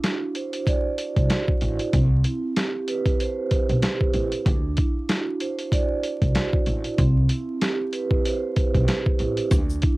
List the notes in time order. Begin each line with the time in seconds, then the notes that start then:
Already playing: D4 E4
0.04 F#4, snare, closed hi-hat
0.35 C5, closed hi-hat
0.53 closed hi-hat
0.67 D5, kick, closed hi-hat
0.98 closed hi-hat
1.16 C2, kick, closed hi-hat
1.30 F#4, snare, closed hi-hat
1.48 kick
1.61 A1 E4, closed hi-hat
1.79 closed hi-hat
1.93 C2 C4, kick, closed hi-hat
2.24 E4, closed hi-hat
2.56 G4, snare, closed hi-hat
2.88 B4, closed hi-hat
3.06 kick, closed hi-hat
3.20 C5, closed hi-hat
3.51 kick, closed hi-hat
3.69 B1, closed hi-hat
3.82 G4, snare, closed hi-hat
4.01 kick
4.14 A1 E4, closed hi-hat
4.32 closed hi-hat
4.45 D2 D4, kick, closed hi-hat
4.77 E4, kick, closed hi-hat
5.09 F#4, snare, closed hi-hat
5.40 C5, closed hi-hat
5.59 closed hi-hat
5.72 D5, kick, closed hi-hat
6.03 closed hi-hat
6.22 C2, kick, closed hi-hat
6.35 F#4, snare, closed hi-hat
6.53 kick
6.66 A1 E4, closed hi-hat
6.84 closed hi-hat
6.98 C2 C4, kick, closed hi-hat
7.29 E4, closed hi-hat
7.61 G4, snare, closed hi-hat
7.93 B4, closed hi-hat
8.11 kick
8.25 C5, closed hi-hat
8.56 kick, closed hi-hat
8.74 B1, kick, closed hi-hat
8.88 G4, snare, closed hi-hat
9.06 kick
9.19 A1 E4, closed hi-hat
9.37 closed hi-hat
9.51 D2 D4, kick, closed hi-hat, shaker
9.70 shaker
9.82 E4, kick, closed hi-hat